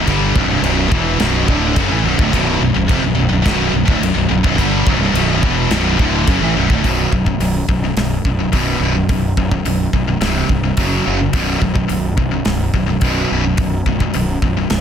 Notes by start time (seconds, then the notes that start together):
0.07 G1 G2 D3 G3, kick, china
0.35 B0 B1 F#2, kick
0.47 C1 C2 G2
0.62 B0 B1 F#2 B2, china
0.91 E1 E2 B2 E3, kick
1.19 B0 B1 F#2 B2, snare, china
1.48 D1 D2 A2 D3, kick
1.76 F#1 F#2 C#3, kick, china
1.91 A1 A2 E3
2.04 B0 B1 F#2
2.18 D1 D2 A2, kick
2.33 B0 B1 F#2 B2, kick, china
2.61 B0 B1 F#2
2.76 B0 B1 F#2
2.89 F1 F2 C3, kick, china
3.04 B0 B1 F#2
3.15 B0 B1 F#2
3.20 B1 F#2
3.29 B0 B1
3.33 B1 F#2
3.42 B0 B1 B2, kick, china
3.46 B1 F#2 B2, snare
3.73 B0 B1 F#2
3.88 D1 D2 A2, kick
4.00 B0 B1 F#2, china
4.04 B1 F#2
4.16 B0 B1 F#2
4.29 B0 B1 F#2
4.44 B0 B1 F#2, kick
4.58 G1 G2 D3 G3, kick, china
4.87 B0 B1 F#2, kick
4.99 C1 C2 G2
5.14 B0 B1 F#2 B2, china
5.43 E1 E2 B2 E3, kick
5.70 B0 B1 F#2 B2, snare, china
5.99 D1 D2 A2 D3, kick
6.27 F#1 F#2 C#3, kick, china
6.41 A1 A2 E3
6.57 B0 B1 F#2
6.70 D1 D2 A2, kick
6.84 B0 B1 F#2 B2, kick, open hi-hat
7.12 B0 B1 F#2, kick
7.26 B1 F#2, kick
7.40 B0 B1 F#2, open hi-hat
7.68 B0 B1 F#2, kick
7.84 B1 F#2
7.97 B0 B1 F#2, snare, open hi-hat
8.25 B0 B1 F#2, kick
8.39 B1 F#2
8.52 B0 B1 F#2 B2, kick, open hi-hat
8.80 B0 B1 F#2 B2
8.95 B1 F#2
9.09 B0 B1 F#2, kick, open hi-hat
9.37 B0 B1 F#2, kick
9.51 B1 F#2, kick
9.65 B0 B1 F#2, open hi-hat
9.93 B0 B1 F#2, kick
10.07 B1 F#2
10.20 C1 C2 G2 C3, snare, open hi-hat
10.49 C1 C2 G2, kick
10.63 C2 G2
10.77 F#1 F#2 C#3 F#3, kick, open hi-hat
11.05 F#1 F#2 C#3 F#3
11.20 F#2 C#3
11.33 B0 B1 F#2 B2, kick, open hi-hat
11.61 B0 B1 F#2, kick
11.74 B1 F#2, kick
11.88 B0 B1 F#2, open hi-hat
12.17 B0 B1 F#2, kick
12.31 B1 F#2
12.45 B0 B1 F#2, snare, open hi-hat
12.74 B0 B1 F#2, kick
12.87 B1 F#2
13.01 B0 B1 F#2 B2, kick, open hi-hat
13.29 B0 B1 F#2 B2
13.43 B1 F#2
13.57 B0 B1 F#2, kick, open hi-hat
13.86 B0 B1 F#2, kick
14.00 B1 F#2, kick
14.14 B0 B1 F#2, open hi-hat
14.42 B0 B1 F#2, kick
14.57 B1 F#2
14.70 B0 B1 F#2, snare, open hi-hat